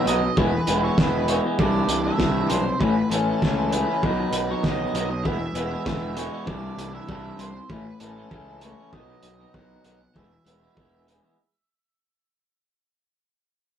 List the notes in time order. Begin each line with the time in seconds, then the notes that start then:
Already playing: B2
0.06 B1 D#3 F#3 B3 D#4 D#5, closed hi-hat
0.22 muted clean electric guitar stroke
0.37 E1 E3 G#3 B3 E4 B4, kick
0.53 muted clean electric guitar stroke
0.67 E1 E3 G#3 B3 E4, closed hi-hat
0.83 G#3 B3 E4 C#5
0.98 E1 E3 G#3 B3 E4 B4, kick, snare
1.28 E3 G#3 B3 C#5, closed hi-hat
1.32 E4
1.44 G#3 B3 E4
1.59 C2 C3 E3 G3 D4 E4 D5, kick
1.88 C2, closed hi-hat
2.04 G3 D4 E4 E5
2.19 C2 C3 E3 G3 D4 E4, kick, snare
2.49 B1 E3 G3 D4 C5, closed hi-hat
2.54 E4
2.66 muted clean electric guitar stroke
2.80 A1 A2 E3 A3 C#4 E4 B4, kick
2.96 muted clean electric guitar stroke
3.10 A1 E3 A3 C#4 E4 A4, closed hi-hat
3.27 A3 C#4 E4
3.42 C#2 A2 E3 A3 C#4 E4, kick, snare
3.72 E3 A3 C#4 E4 B4, closed hi-hat
3.87 A3 C#4 E4
4.02 B1 B2 D#3 F#3 B3 D#4, kick
4.32 B1, closed hi-hat
4.48 F#3 B3 D#4 C#5
4.63 B1 B2 D#3 F#3 B3 D#5, kick, snare
4.68 D#4
4.94 B1 D#3 F#3 B3 D#4, closed hi-hat
5.10 D#5, muted clean electric guitar stroke
5.23 E1 E3 G#3 B3 E4 E5, kick
5.40 muted clean electric guitar stroke
5.53 E1 E3 G#3 B3, closed hi-hat
5.58 E4
5.70 G#3 B3 E4
5.85 E1 E3 G#3 B3 E4, kick, snare
6.15 E3 G#3 B3 E4 C#5, closed hi-hat
6.31 G#3 B3 E4
6.46 C2 C3 E3 G3 D4 E4 D5, kick
6.77 C2, closed hi-hat
6.92 G3 D4 E4 E5
7.07 C2 C3 E3 G3 D4 E4, kick
7.37 C2 E3 G3 D4 E4 C5, closed hi-hat
7.54 muted clean electric guitar stroke
7.69 A1 A2 E3 A3 C#4 E4 B4, kick
7.86 muted clean electric guitar stroke
8.00 A1 E3 A3 C#4 E4 A4, closed hi-hat
8.15 A3 C#4 E4
8.29 C#2 A2 E3 A3 C#4 E4, kick
8.60 E3 A3 C#4 E4 C#5, closed hi-hat
8.77 A3 C#4 E4
8.92 B1 B2 D#3 F#3 B3 D#4 D#5, kick
9.23 B1, closed hi-hat
9.39 F#3 B3 D#4
9.54 B1 B2 D#3 F#3 B3 D#4 F#5, kick
9.84 B1 D#3 F#3 B3 D#4, closed hi-hat
10.00 muted clean electric guitar stroke
10.14 E1 E3 G#3 B3 E4 E5, kick
10.31 muted clean electric guitar stroke
10.45 E1 E3 G#3 B3 E4, closed hi-hat
10.60 G#3 B3 E4
10.75 E1 E3 G#3 B3 E4, kick
11.06 E3 G#3 B3 E4, closed hi-hat
11.22 G#3 B3 E4